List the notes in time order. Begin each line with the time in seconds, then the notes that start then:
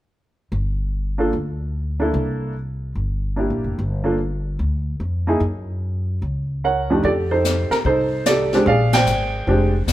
0.52 G1
1.18 A#3 D4 F4 A4
1.33 D2
2.00 A#3 D4 E4 A4
2.14 C2
2.95 G1
3.36 A#3 D4 E4 G4
3.50 A#1
3.64 F1
3.79 G1
4.04 A#3 D4 F4 A4
4.59 D2
5.00 F2
5.27 A#3 D#4 E4 G#4
5.40 F#2
6.22 C#2
6.64 A#4 C#5 F#5
6.90 F2 A3 D4 D#4 G4
7.03 F2 G4 A4 D5, brush sweep, kick
7.31 D#4 A4 C5
7.45 snare, hi-hat pedal
7.71 A#4, muted upright bass stroke, snare
7.85 C2 D#4 A4 C5, brush sweep, kick
8.26 G4 A4 D5, snare, hi-hat pedal
8.53 G#3 C4 D4 G4, snare
8.66 A#1 G#4 D5 F5, brush sweep, kick
8.93 C5 D5 G5, snare, ride
9.06 G#1, hi-hat pedal
9.47 F1 G#3 C4 D4 G4, brush sweep, kick
9.87 E1, snare, hi-hat pedal